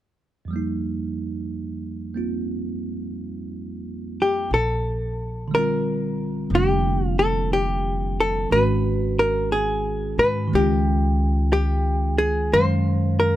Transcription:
0.45 F2 F3
0.51 G3 A#3
0.56 D#4
2.14 A#3 C4 F4
4.22 G4
4.51 A#1 A4
5.48 D3 G3
5.55 C4 A#4
5.59 F4
6.50 F1 F3 A#3
6.54 D4 G4
7.19 A4
7.53 G4
8.20 A4
8.50 G#1 D#3 G#3 B4
8.54 C#4 F#4
9.19 A#4
9.52 G#4
10.18 G#2 B4
10.48 D#3
10.52 C#2 G#3 C#4 G4
10.60 F4
11.53 G4
12.18 G#4
12.53 F#2 D#3 G#3 C#4 C5 F5
13.20 A#4

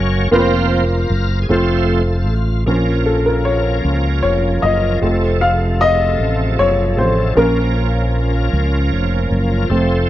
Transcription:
Already playing: F#1 F#3 A#3 C#4 F#4 C#5
0.31 F1 F3 A#3 C4 F4 A#4 B4
0.40 C5
1.10 F#1
1.42 G#4
1.49 F1 F3 A3 C4 F4 A4 C5
2.27 A1
2.66 A#1 F3 A#3 C#4 F4 A#4
3.06 A4
3.26 A#4
3.45 C#5
3.85 C#2
4.23 F1 C#5
4.62 F#1 D#5
5.01 F1 C3 F3 A3 C4 F4 A4
5.41 F5
5.81 D#5
6.19 A1
6.59 F#1 C#5
6.97 A1 F3 A3 C4 C5
7.35 A#1 F3 A#3 C#4 A#4
8.53 C#2
8.92 F1
9.31 F#1
9.69 F1 F3 A3 C4 A4

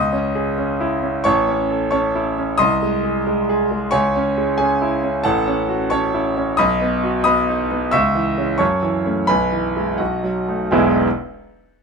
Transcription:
Already playing: C#2 D#5 D#6
0.13 C#4
0.35 G#4
0.58 C#4
0.80 E4
1.03 C#4
1.24 A1 C#5 A5 C#6
1.48 C#4
1.71 A4
1.91 C#4 C#5 A5 C#6
2.15 E4
2.38 C#4
2.58 C2 D#5 C6 D#6
2.82 G#3
3.04 G#4
3.27 G#3
3.49 G#4
3.71 G#3
3.91 C#2 C#5 G#5 C#6
4.16 C#4
4.38 G#3
4.58 C#4 G#4 G#5
4.82 E4
5.04 C#4
5.24 A1 A4 F#5 A5
5.47 C#4
5.69 F#4
5.90 C#4 C#5 A5 C#6
6.14 E4
6.37 C#4
6.57 B1 D#5 B5 D#6
6.82 B3
7.04 F#4
7.24 B3 D#5 B5 D#6
7.49 D#4
7.71 B3
7.91 C#2 E5 C#6 E6
8.15 E3
8.38 G#3 C#4
8.58 F#2 C#5 A5 C#6
8.83 E3
9.05 A3 C#4
9.27 B1 B4 G#5 B5
9.52 E3
9.76 G#3 E4
9.98 B1 F#4 D#5 F#5
10.23 F#3
10.48 A3 D#4
10.71 E1 B1 E3 G#3 B3 E4 G#5

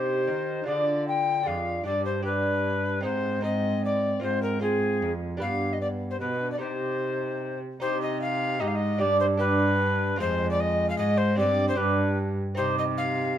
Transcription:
Already playing: C3 D#4 G4 C5
0.27 D#3
0.64 D4 F4 G#4 D5
0.68 D3
1.08 G5
1.43 F2 D4 F4 G#4 F5
1.47 F2
1.84 G2 D4 G4 D5
1.88 G2
2.05 C5
2.22 D4 G4 B4
3.01 G#2 C4 D#4 C5
3.41 C4 D#4 C5 D#5
3.85 D5
4.20 G#2 C4 F4 C5
4.42 A#4
4.60 C4 F4 G#4 C5
5.01 F2
5.37 G2 D4 G4 B4
5.41 B3 F5
5.73 D#5
5.81 B3 D5
6.10 C5
6.20 B2 B3 B4
6.40 D4
6.52 D5
6.58 C3 D#4 G4 C5
7.80 C3 D#4 G4 C5
8.02 D#5
8.21 F5
8.59 G#2 D#4 G4 D#5
8.67 F5
8.75 D#5
8.98 G2 D4 G4 D5
9.20 C5
9.37 D4 G4 B4
10.16 F2 G#3 C4 F4 G#4 C5
10.20 F2
10.51 D5
10.60 D#5
10.89 F5
10.98 G#2 D#5
11.17 C5
11.35 G2 C4 D4 G4 D5
11.69 C5
11.75 G2 D4 G4 B4
11.79 G2
12.55 C3 C4 D#4 G4 C5
12.78 D#5
12.97 F5

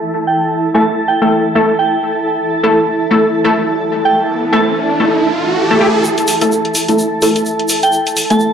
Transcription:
Already playing: E4 A4 A5
0.27 G5
0.74 A3 E4 A4 A5
1.08 G5
1.22 A3 E4 A4 G5
1.55 A3 E4 A4
1.79 G5
2.26 riser
2.63 A3 E4 A4
3.11 A3 E4 A4
3.44 A3 E4 A4
4.05 G5
4.52 A3 E4 A4 A5
5.00 A3 E4 A4
5.71 A3 E4 A4
5.81 A3 E4 G4
6.04 shaker
6.18 closed hi-hat, shaker
6.27 open hi-hat, shaker
6.41 A3 E4 A4, closed hi-hat, shaker
6.52 shaker
6.65 closed hi-hat
6.75 open hi-hat, shaker
6.88 A3 E4 A4, closed hi-hat, shaker
6.99 shaker
7.22 A3 E4 A4, open hi-hat, shaker
7.36 closed hi-hat, shaker
7.46 shaker
7.59 closed hi-hat
7.68 open hi-hat, shaker
7.83 G5, closed hi-hat, shaker
7.92 shaker
8.07 closed hi-hat, shaker
8.17 open hi-hat, shaker
8.30 A3 E4 A4 A5, closed hi-hat, shaker
8.40 shaker

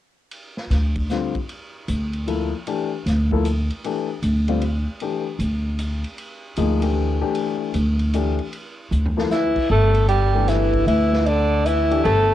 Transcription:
0.31 ride
0.57 snare
0.70 D2, snare, hi-hat pedal, ride
0.95 kick, ride
1.09 D3 G3 C4 F4, snare, hi-hat pedal
1.35 kick, ride
1.49 ride
1.88 D2, hi-hat pedal, ride
2.13 ride
2.27 F3 A#3 E4 A4, ride
2.67 E3 A3 D4 G4, ride
3.06 D2, snare, hi-hat pedal, ride
3.31 F3 A#3 E4 A4, kick
3.45 hi-hat pedal, ride
3.70 ride
3.84 E3 A3 D4 G4, ride
4.23 D2, hi-hat pedal, ride
4.48 D3 G3 C4 F4, ride
4.62 ride
5.00 E3 A3 D4 G4, ride
5.39 D2, hi-hat pedal, ride
5.79 hi-hat pedal, ride
6.04 ride
6.18 ride
6.56 D2 F3 A#3 D#4 G#4, hi-hat pedal, ride
6.82 E3 A3 D4 G4, ride
7.21 E3 A3 D4 G4
7.35 ride
7.74 D2, hi-hat pedal, ride
7.99 ride
8.13 E3 A3 D4 G4, hi-hat pedal, ride
8.38 ride
8.52 ride
8.91 D2, hi-hat pedal
9.05 floor tom
9.17 F3 A#3 E4 A4, snare
9.30 E3 E4, snare, hi-hat pedal
9.56 kick, crash
9.70 G1 A3 A4
9.94 ride
10.08 G3 G4, hi-hat pedal, ride
10.34 E3 A3 D4 G4
10.48 E3 E4, snare, hi-hat pedal, ride
10.73 kick, ride
10.86 D2 E3 E4, ride
11.13 snare
11.26 D3 D4, ride
11.66 E3 E4, hi-hat pedal, ride
11.91 E3 A3 D4 G4, ride
12.03 G1 A3 A4, ride

